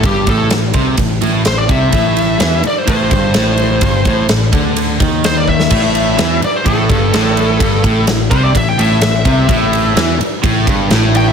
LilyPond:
<<
  \new Staff \with { instrumentName = "Lead electric guitar" } { \time 4/4 \key a \minor \tempo 4 = 127 g'8 a'8 r2 c''16 d''16 e''8~ | e''4. d''16 c''16 c''2~ | c''4 r2 c''16 d''16 e''8~ | e''4. d''16 c''16 a'2~ |
a'4 r8 c''16 d''16 e''16 g''16 e''4.~ | e''4. r2 g''16 e''16 | }
  \new Staff \with { instrumentName = "Distorted electric guitar" } { \clef bass \time 4/4 \key a \minor g,8 a,8 a,8 c8 a,8 a,8 a,8 c8 | a,4 e8 r8 a,8 g,8 a,4 | g,8 a,8 a,8 d4 dis4. | a,4 e8 r8 a,8 g,8 a,4 |
g,8 a,8 a,8 c8 a,8 a,8 a,8 c8 | a,4 e8 r8 a,8 g,8 a,4 | }
  \new Staff \with { instrumentName = "Distorted electric guitar" } { \clef bass \time 4/4 \key a \minor r1 | r1 | r1 | a,4 e8 r8 a,8 g,8 a,4 |
g,8 a,8 a,8 c8 a,8 a,8 a,8 c8 | a,4 e8 r8 a,8 g,8 a,4 | }
  \new Staff \with { instrumentName = "Overdriven electric guitar" } { \clef bass \time 4/4 \key a \minor g,8 a,8 a,8 c8 a,8 a,8 a,8 c8 | a,4 e8 r8 a,8 g,8 a,4 | g,8 a,8 a,8 d4 dis4. | a,4 e8 r8 a,8 g,8 a,4 |
g,8 a,8 a,8 c8 a,8 a,8 a,8 c8 | a,4 e8 r8 a,8 g,8 a,4 | }
  \new Staff \with { instrumentName = "Picked electric bass" } { \clef bass \time 4/4 \key a \minor g,,8 a,,8 a,,8 c,8 a,,8 a,,8 a,,8 c,8 | a,,4 e,8 r8 a,,8 g,,8 a,,4 | g,,8 a,,8 a,,8 d,4 dis,4. | a,,4 e,8 r8 a,,8 g,,8 a,,4 |
g,,8 a,,8 a,,8 c,8 a,,8 a,,8 a,,8 c,8 | a,,4 e,8 r8 a,,8 g,,8 a,,4 | }
  \new DrumStaff \with { instrumentName = "Drums" } \drummode { \time 4/4 <bd cymr>8 <bd cymr>8 <cymr sn>8 <bd cymr>8 <bd cymr>8 cymr8 <cymr sn>8 <bd cymr>8 | <bd cymr>8 cymr8 <cymr sn>8 cymr8 <bd cymr>8 <bd cymr>8 <cymr sn>8 cymr8 | <bd cymr>8 <bd cymr>8 <cymr sn>8 <bd cymr>8 cymr8 <bd cymr>8 <cymr sn>8 bd16 sn16 | <cymc bd cymr>8 cymr8 <cymr sn>8 cymr8 <bd cymr>8 <bd cymr>8 <cymr sn>8 cymr8 |
<bd cymr>8 <bd cymr>8 <cymr sn>8 <bd cymr>8 <bd cymr>8 cymr8 <cymr sn>8 <bd cymr>8 | <bd cymr>8 cymr8 <cymr sn>8 cymr8 <bd cymr>8 <bd cymr>8 <cymr sn>8 cymr8 | }
>>